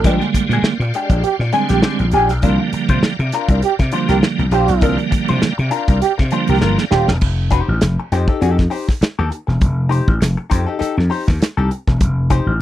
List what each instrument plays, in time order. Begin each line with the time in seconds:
Already playing: trombone G#4, tonewheel organ D5 F5 G5 C6
0.04 slap bass A#1, tonewheel organ D3 G3 G#3 A3, hollow-body jazz guitar G#3 D4 G4, kick, closed hi-hat
0.11 tonewheel organ A#3
0.22 muted hollow-body jazz guitar stroke, closed hi-hat
0.34 muted slap bass stroke, muted hollow-body jazz guitar stroke, kick, closed hi-hat
0.49 slap bass A#2, hollow-body jazz guitar G#4, closed hi-hat
0.54 hollow-body jazz guitar G#3 D4
0.62 muted slap bass stroke, muted hollow-body jazz guitar stroke, snare
0.80 slap bass A#2, muted hollow-body jazz guitar stroke, closed hi-hat
0.94 hollow-body jazz guitar G#3 D4 G4, closed hi-hat
1.09 slap bass A#1, hollow-body jazz guitar G#3 D4 G4, kick, closed hi-hat
1.23 trombone G4, muted slap bass stroke, muted hollow-body jazz guitar stroke, closed hi-hat
1.39 slap bass A#2, muted hollow-body jazz guitar stroke, snare
1.52 tonewheel organ D3 G3 G#3 C4, hollow-body jazz guitar G#3 D4 G#4, closed hi-hat
1.69 slap bass A#1, hollow-body jazz guitar G#3 D4 G4, trombone G4, snare, closed hi-hat
1.83 hollow-body jazz guitar G#3 D4 G4, snare
1.99 slap bass A#1, muted hollow-body jazz guitar stroke, closed hi-hat
2.12 slap bass A#1, hollow-body jazz guitar G#3 D4 G#4, trombone G4, closed hi-hat
2.29 slap bass B1, muted hollow-body jazz guitar stroke, snare, closed hi-hat
2.42 slap bass C2, tonewheel organ D3 E3 G3 A#3 F5 A#5, hollow-body jazz guitar D4 F4 A#4, kick, closed hi-hat
2.49 tonewheel organ F3
2.60 muted hollow-body jazz guitar stroke
2.73 muted hollow-body jazz guitar stroke, muted slap bass stroke, closed hi-hat
2.89 slap bass C3, hollow-body jazz guitar D4 F4 C5, kick, closed hi-hat
3.03 muted hollow-body jazz guitar stroke, muted slap bass stroke, snare
3.19 slap bass C3, muted hollow-body jazz guitar stroke, closed hi-hat
3.32 hollow-body jazz guitar D4 F4 A#4, snare, closed hi-hat
3.49 slap bass C2, hollow-body jazz guitar D4 F4 A#4, kick, closed hi-hat
3.62 trombone G4, muted hollow-body jazz guitar stroke, muted slap bass stroke, closed hi-hat
3.79 slap bass C3, muted hollow-body jazz guitar stroke, kick, snare, closed hi-hat
3.92 tonewheel organ D3 F3 G3 A#3, hollow-body jazz guitar D4 F4 C5, closed hi-hat
4.09 slap bass C2, hollow-body jazz guitar D4 F4 A#4, trombone G4, snare, closed hi-hat
4.22 muted hollow-body jazz guitar stroke, snare
4.39 slap bass C2, muted hollow-body jazz guitar stroke, closed hi-hat
4.51 slap bass A#1, hollow-body jazz guitar D4 F4 C5, trombone G4, closed hi-hat
4.68 slap bass B1, muted hollow-body jazz guitar stroke, snare, closed hi-hat
4.81 slap bass C2, tonewheel organ D3 F3 G3 A#3, hollow-body jazz guitar D4 F4 A#4, kick, closed hi-hat
4.98 muted hollow-body jazz guitar stroke, closed hi-hat
5.11 muted hollow-body jazz guitar stroke, muted slap bass stroke, kick, closed hi-hat
5.28 slap bass C3, hollow-body jazz guitar D4 F4 C5, closed hi-hat
5.42 muted hollow-body jazz guitar stroke, muted slap bass stroke, snare
5.58 slap bass C3, muted hollow-body jazz guitar stroke, closed hi-hat
5.71 hollow-body jazz guitar D4 F4 A#4, closed hi-hat
5.88 slap bass C2, hollow-body jazz guitar D4 F4 A#4, kick, closed hi-hat
6.01 trombone G4, muted hollow-body jazz guitar stroke, muted slap bass stroke, closed hi-hat
6.18 slap bass C3, muted hollow-body jazz guitar stroke, kick, snare
6.31 tonewheel organ D3 F3 G3 A#3, hollow-body jazz guitar D4 F4 C5, closed hi-hat
6.48 slap bass C2, hollow-body jazz guitar D4 F4 A#4, trombone G4, closed hi-hat
6.61 slap bass G1, hollow-body jazz guitar D4 F4 A#4, snare
6.78 muted hollow-body jazz guitar stroke, snare
6.91 slap bass D#1, hollow-body jazz guitar D4 F4 C5, trombone G4, snare
7.08 slap bass E1, muted hollow-body jazz guitar stroke, snare
7.21 slap bass F1, kick, crash
7.51 hollow-body jazz guitar D#4 G4 C5, kick, closed hi-hat
7.68 slap bass A1
7.81 slap bass F1, muted hollow-body jazz guitar stroke, snare, closed hi-hat
8.00 muted hollow-body jazz guitar stroke
8.12 slap bass F2, hollow-body jazz guitar D#4 G4 C5, snare, closed hi-hat
8.28 hollow-body jazz guitar D#4 G4 A4, kick
8.41 slap bass F2, hollow-body jazz guitar D#4 G4 A4, closed hi-hat
8.58 muted hollow-body jazz guitar stroke, kick, snare
8.70 hollow-body jazz guitar D#4 G4 C5, open hi-hat
8.88 muted hollow-body jazz guitar stroke, kick, snare
9.01 muted slap bass stroke, muted hollow-body jazz guitar stroke, snare, closed hi-hat
9.19 slap bass D#2, hollow-body jazz guitar D#4 G4 A4
9.30 muted hollow-body jazz guitar stroke, closed hi-hat
9.47 slap bass E1, muted hollow-body jazz guitar stroke, snare
9.61 slap bass F1, kick, closed hi-hat
9.89 hollow-body jazz guitar D#4 G4 C5, closed hi-hat
10.08 slap bass A1, kick
10.21 slap bass F1, muted hollow-body jazz guitar stroke, snare, closed hi-hat
10.37 muted hollow-body jazz guitar stroke
10.50 slap bass F2, hollow-body jazz guitar D#4 G4 C5, kick, closed hi-hat
10.66 hollow-body jazz guitar D#4 G4 A4
10.79 hollow-body jazz guitar D#4 G4 A4, muted slap bass stroke, closed hi-hat
10.97 slap bass F2, muted hollow-body jazz guitar stroke, snare
11.10 hollow-body jazz guitar D#4 G4 C5, open hi-hat
11.27 slap bass D#2, muted hollow-body jazz guitar stroke, kick, snare
11.40 muted hollow-body jazz guitar stroke, muted slap bass stroke, snare, closed hi-hat
11.57 slap bass C2, hollow-body jazz guitar D#4 G4 A4
11.71 muted hollow-body jazz guitar stroke, closed hi-hat
11.87 slap bass E1, muted hollow-body jazz guitar stroke, kick, snare
12.01 slap bass F1, kick, closed hi-hat
12.30 hollow-body jazz guitar D#4 G4 C5, kick, closed hi-hat
12.46 slap bass A1